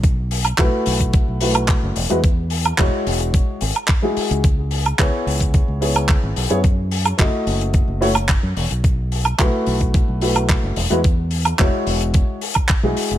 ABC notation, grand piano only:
X:1
M:4/4
L:1/16
Q:1/4=109
K:E
V:1 name="Grand piano"
z4 [A,EFB]6 [A,EFB]4 z [G,EFB] | z4 [G,EFc]6 z3 [G,EFG]3 | z4 [B,EGc]6 [B,EGc]4- [B,EGc] [B,EGc] | z4 [A,EFd]6 [A,EFc] z4 z |
z4 [A,EFB]6 [A,EFB]4 z [G,EFB] | z4 [G,EFc]6 z3 [G,EFG]3 |]